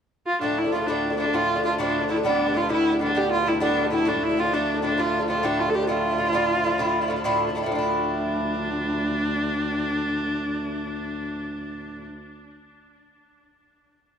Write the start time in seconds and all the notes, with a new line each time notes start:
0.27 F4
0.41 D2 A2 F3 A3 D4
0.58 E4
0.64 F3 A3 D4
0.72 A2 F3 A3 D4 F4
0.80 F3 A3 D4
0.87 A2 F3 A3 D4
1.10 F3 A3 D4
1.17 A2 F3 A3 D4
1.25 F3 A3 D4
1.33 A2 F3 A3 D4 F4
1.56 F3 A3 D4
1.64 A2 F3 A3 D4 F4
1.71 F3 A3 D4
1.78 A2 F3 A3 D4
2.01 F3 A3 D4
2.08 A2 F3 A3 D4 E4
2.16 F3 A3 D4
2.23 A2 G3 B3 D4
2.46 G3 B3 D4
2.54 A2 G3 B3 D4 F4
2.62 G3 B3 D4
2.69 A2 G3 B3 D4 E4
2.92 G3 B3 D4
2.99 A2 G3 B3 D4
3.06 G3 B3 D4
3.15 A2 G3 B3 D4 G4
3.32 F4
3.38 G3 B3 D4
3.46 A2 G3 B3 D4 E4
3.53 G3 B3 D4
3.60 A2 G3 B3 D4
3.83 G3 B3 D4
3.90 A2 G3 B3 D4 E4
3.98 G3 B3 D4
4.05 A2 F3 A3 D4
4.23 E4
4.29 F3 A3 D4
4.37 A2 F3 A3 D4 F4
4.45 F3 A3 D4
4.52 A2 F3 A3 D4
4.74 F3 A3 D4
4.82 A2 F3 A3 D4
4.90 F3 A3 D4
4.98 A2 F3 A3 D4 F4
5.20 F3 A3 D4
5.28 A2 F3 A3 D4 F4
5.35 F3 A3 D4
5.43 A2 F3 A3 D4
5.59 F4
5.65 F3 A3 D4
5.70 A2 A4
5.74 F3 A3 D4 G4
5.79 F3 A3 D4
5.87 A2 F3 D4 E4 F4
6.10 F3 D4 E4
6.18 A2 F3 D4 E4
6.25 F3 D4 E4
6.33 A2 F3 D4 E4
6.55 F3 D4 E4
6.63 A2 F3 D4 E4
6.71 F3 D4 E4
6.78 A2 F3 D4 E4
7.01 F3 D4 E4
7.08 A2 F3 D4 E4
7.16 F3 D4 E4
7.24 A2 F3 D4 E4
7.47 F3 D4 E4
7.55 A2 F3 D4 E4
7.62 F3 D4 E4
7.66 A2
7.71 D2 F3 D4
7.75 D4 E4